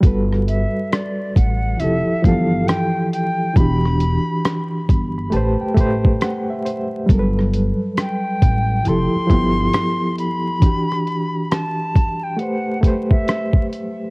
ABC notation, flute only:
X:1
M:4/4
L:1/16
Q:"Swing 16ths" 1/4=68
K:G
V:1 name="Flute"
z2 e2 d2 f2 e2 =f2 g2 g2 | b6 z8 z2 | z4 g4 c'6 b2- | b4 a3 g f2 z e3 z2 |]